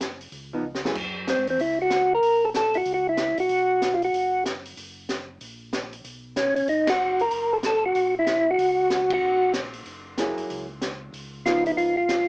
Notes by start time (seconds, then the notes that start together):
Already playing: F#1
0.00 snare, closed hi-hat
0.21 open hi-hat
0.32 C#2, open hi-hat
0.53 F3 B3 D#4
0.75 snare
0.85 F#3 A#3 E4 G#4, snare
0.95 F#2, kick, crash
1.27 C4, snare, closed hi-hat
1.38 G#2
1.47 E2 C4, open hi-hat
1.59 C#2 E4, open hi-hat
1.82 F#4
1.90 snare, closed hi-hat
2.15 A#4
2.22 A#1, open hi-hat
2.45 A4
2.54 A4, snare, closed hi-hat
2.74 E4 F#4, open hi-hat
2.85 C#2, open hi-hat
2.94 F#4
3.09 E4
3.17 snare, closed hi-hat
3.37 A#1 F#4, open hi-hat
3.49 B1, open hi-hat
3.82 snare, closed hi-hat
3.94 F4
4.02 F#4, open hi-hat
4.13 F#1, open hi-hat
4.46 snare, closed hi-hat
4.65 open hi-hat
4.77 F#1, open hi-hat
5.09 snare, closed hi-hat
5.41 A#1, open hi-hat
5.73 snare, closed hi-hat
5.93 open hi-hat
6.04 B1, open hi-hat
6.36 C#4, snare, closed hi-hat
6.55 B1 C#4, open hi-hat
6.68 F#1 D#4, open hi-hat
6.87 F#4, snare, ride
7.19 A#4, open hi-hat
7.31 F#1, open hi-hat
7.53 A4
7.63 A4, snare, closed hi-hat
7.86 F#4
7.95 A#1, open hi-hat
8.19 E4
8.26 snare, closed hi-hat
8.51 F#4
8.58 C#2, open hi-hat
8.90 snare, closed hi-hat
9.10 F#4, kick, ride
9.22 A#1
9.54 snare, closed hi-hat
9.73 open hi-hat
9.85 F#1, open hi-hat
10.18 F#3 A#3 E4 G#4, snare, closed hi-hat
10.37 F#1, open hi-hat
10.50 C#2, open hi-hat
10.81 snare, closed hi-hat
11.13 C#2, open hi-hat
11.46 F3 B3 D#4 F4, snare, closed hi-hat
11.66 E4, open hi-hat
11.76 G#1 F4, open hi-hat
11.97 F4
12.09 snare, closed hi-hat